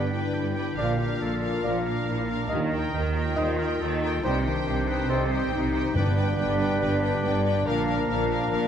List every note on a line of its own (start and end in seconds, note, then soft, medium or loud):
0.00 0.29 G1 soft
0.00 0.29 G2 soft
0.00 0.80 G2 soft
0.00 0.80 D3 soft
0.00 0.14 B3 soft
0.00 0.11 D4 soft
0.00 0.12 D4 soft
0.00 0.55 G4 soft
0.00 0.12 B4 soft
0.00 0.34 B4 soft
0.00 0.36 B4 soft
0.00 0.12 G5 soft
0.12 0.54 D4 soft
0.12 0.98 D4 soft
0.12 0.79 E4 soft
0.12 0.56 B4 soft
0.12 0.54 G5 soft
0.34 0.72 G1 soft
0.34 0.73 G2 soft
0.34 1.21 G4 soft
0.55 0.77 D4 soft
0.55 0.80 G4 soft
0.55 0.78 B4 soft
0.55 0.77 G5 soft
0.77 1.15 A#1 soft
0.77 2.52 A#2 soft
0.77 1.16 A#2 soft
0.77 0.94 A#2 soft
0.77 0.94 F3 soft
0.77 0.94 A#3 soft
0.77 1.00 D4 soft
0.77 0.98 D4 soft
0.77 0.94 F4 soft
0.77 0.98 A#4 soft
0.77 0.93 D5 soft
0.77 0.98 F5 soft
0.98 1.41 D4 soft
0.98 1.83 D4 soft
0.98 2.09 F4 soft
0.98 1.41 A#4 soft
0.98 1.41 F5 soft
1.21 1.59 A#1 soft
1.21 1.59 A#2 soft
1.21 1.62 A4 soft
1.21 4.25 D5 soft
1.42 1.84 D4 soft
1.42 2.27 F4 soft
1.42 1.84 A#4 soft
1.42 1.85 F5 soft
1.63 2.02 A#1 soft
1.63 1.79 A#2 soft
1.63 2.02 A#2 soft
1.63 2.51 F3 soft
1.63 1.79 F3 soft
1.63 1.79 A#3 soft
1.63 1.79 F4 soft
1.63 3.40 A#4 soft
1.63 1.79 D5 soft
1.84 2.51 D4 soft
1.84 2.28 D4 soft
1.84 2.28 A#4 soft
1.84 2.28 F5 soft
2.07 2.45 A#1 soft
2.07 2.45 A#2 soft
2.07 2.30 E4 soft
2.28 2.49 D4 soft
2.28 2.50 D4 soft
2.28 2.52 F4 soft
2.28 2.50 A#4 soft
2.28 2.50 F5 soft
2.48 2.89 D#2 medium
2.48 2.66 A#2 soft
2.48 4.25 D#3 soft
2.48 2.88 D#3 medium
2.48 2.65 G3 soft
2.48 2.65 A#3 soft
2.48 2.64 D#4 soft
2.48 2.93 D#4 soft
2.48 2.64 D#5 soft
2.71 3.15 D#4 soft
2.71 3.14 A#4 soft
2.71 3.14 G5 soft
2.93 3.32 D#2 soft
2.93 3.32 D#3 soft
2.93 3.04 D#4 soft
3.15 3.58 D#4 soft
3.15 4.25 F4 soft
3.15 4.01 G4 soft
3.15 3.58 A#4 soft
3.15 3.57 G5 soft
3.36 3.75 D#2 medium
3.36 3.53 A#2 soft
3.36 3.75 D#3 medium
3.36 3.53 G3 soft
3.36 3.52 A#3 soft
3.36 4.25 A#3 soft
3.36 3.52 D#4 soft
3.36 3.61 C5 soft
3.36 3.51 D#5 medium
3.59 4.01 D#4 soft
3.59 3.83 A#4 soft
3.59 4.02 A#4 soft
3.59 4.00 G5 soft
3.80 4.18 D#2 medium
3.80 4.18 D#3 medium
3.80 4.24 A4 soft
4.02 4.23 D#4 soft
4.02 4.87 G4 soft
4.02 4.24 A#4 soft
4.02 4.23 G5 soft
4.22 4.61 C2 medium
4.22 4.39 G2 medium
4.22 4.61 C3 medium
4.22 5.97 C3 soft
4.22 4.39 G3 medium
4.22 4.38 C4 medium
4.22 4.38 D#4 soft
4.22 4.47 D#4 medium
4.22 4.45 D#4 soft
4.22 4.66 G4 soft
4.22 4.42 C5 soft
4.22 4.39 C5 medium
4.22 4.44 G5 soft
4.43 4.88 D#3 soft
4.43 5.97 D#3 soft
4.43 5.12 D4 soft
4.43 4.86 C5 soft
4.43 4.86 G5 soft
4.66 5.05 C2 medium
4.66 5.04 C3 medium
4.66 4.90 G4 soft
4.66 5.52 C5 soft
4.88 5.30 D#4 soft
4.88 5.73 G4 soft
4.88 5.11 B4 medium
4.88 5.29 C5 soft
4.88 5.30 G5 soft
5.08 5.47 C2 medium
5.08 5.24 G2 medium
5.08 5.47 C3 medium
5.08 5.25 G3 medium
5.08 7.68 G3 soft
5.08 5.24 C4 medium
5.08 5.53 C4 medium
5.08 5.24 D#4 medium
5.08 5.34 A4 medium
5.08 5.24 C5 medium
5.31 5.73 D#4 soft
5.31 5.97 D#4 soft
5.31 5.52 G4 medium
5.31 5.71 C5 soft
5.31 5.72 G5 soft
5.51 5.89 C2 medium
5.51 5.90 C3 medium
5.51 5.96 D#4 medium
5.51 5.94 G4 medium
5.51 5.97 C5 soft
5.73 5.95 D#4 soft
5.73 6.58 G4 soft
5.73 5.94 C5 soft
5.73 5.93 G5 soft
5.94 6.32 G1 medium
5.94 7.67 G2 medium
5.94 6.33 G2 medium
5.94 6.55 G2 medium
5.94 7.62 G2 medium
5.94 7.62 G3 medium
5.94 7.62 B3 medium
5.94 8.68 D4 medium
5.94 6.17 D4 medium
5.94 8.68 D4 medium
5.94 6.14 B4 medium
5.94 7.50 B4 medium
5.94 7.68 D5 medium
5.94 6.15 G5 medium
6.15 7.02 D4 soft
6.15 6.35 B4 medium
6.15 6.37 G5 soft
6.20 6.38 D4 soft
6.36 6.76 G1 medium
6.36 6.76 G2 medium
6.36 6.59 D4 medium
6.36 6.57 B4 soft
6.36 7.23 B4 soft
6.36 6.59 G5 medium
6.58 6.81 D4 soft
6.58 7.43 G4 soft
6.58 6.80 B4 soft
6.58 6.81 G5 soft
6.81 7.19 G1 medium
6.81 7.18 G2 medium
6.81 7.68 D3 soft
6.81 7.01 D4 medium
6.81 7.00 B4 medium
6.81 7.01 G5 medium
7.01 7.22 D4 soft
7.01 7.21 B4 soft
7.01 7.23 G5 soft
7.23 7.61 G1 medium
7.23 7.61 G2 medium
7.23 7.44 D4 soft
7.23 7.43 B4 medium
7.23 7.68 B4 medium
7.23 7.44 G5 soft
7.44 7.65 D4 soft
7.44 7.67 G4 soft
7.44 7.65 B4 medium
7.44 7.66 G5 soft
7.65 8.03 A#1 medium
7.65 8.68 A#2 medium
7.65 8.04 A#2 medium
7.65 8.68 A#2 medium
7.65 8.68 F3 medium
7.65 8.68 A#3 medium
7.65 7.86 D4 medium
7.65 7.86 A#4 medium
7.65 8.68 A#4 medium
7.65 7.87 F5 medium
7.87 8.68 D4 soft
7.87 8.08 D4 soft
7.87 8.06 A#4 medium
7.87 8.08 F5 soft
8.08 8.46 A#1 medium
8.08 8.46 A#2 medium
8.08 8.30 D4 medium
8.08 8.27 A#4 soft
8.08 8.68 A#4 soft
8.08 8.30 F5 soft
8.28 8.50 D4 soft
8.28 8.68 F4 soft
8.28 8.49 A#4 soft
8.28 8.51 F5 soft
8.50 8.68 A#1 medium
8.50 8.68 A#2 medium
8.50 8.68 F3 soft
8.50 8.68 D4 medium
8.50 8.68 A#4 medium
8.50 8.68 F5 medium